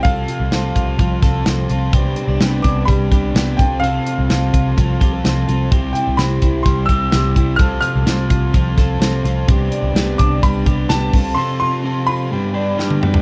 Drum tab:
HH |x-x-x-x-x-x-x-x-|x-x-x-x-x-x-x-x-|x-x-x-x-x-x-x-x-|x-x-x-x-x-x-x-x-|
SD |----o-----o-o---|----o-------o---|----o-------o---|----o-------o---|
T1 |----------------|----------------|----------------|----------------|
T2 |----------------|----------------|----------------|----------------|
FT |----------------|----------------|----------------|----------------|
BD |o-----o-o-o-----|o-----o-o-o---o-|------o-o-o-----|o-----o-o-o---o-|

HH |x-x-x-x-x-x-x-x-|x-x-x-x-x-x-x-o-|----------------|
SD |----o-----o-o---|----o-------o---|------------o---|
T1 |----------------|----------------|-------------o--|
T2 |----------------|----------------|--------------o-|
FT |----------------|----------------|---------------o|
BD |o-----o-o-o-----|o-----o-o-o---o-|----------------|